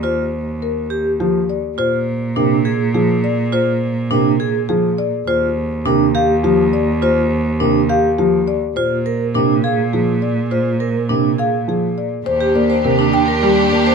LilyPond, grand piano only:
\new Staff \with { instrumentName = "Grand piano" } { \clef bass \time 3/4 \key ees \major \tempo 4 = 103 r2 f16 r8. | r4 c16 r8. f16 r8. | r4 c16 r8. f16 r8. | r4 c16 r8. f16 r8. |
r4 c16 r8. f16 r8. | r4 c16 r8. f16 r8. | r4 c16 r8. f16 r8. | r8 bes16 r16 c16 r8. g16 r16 bes16 r16 | }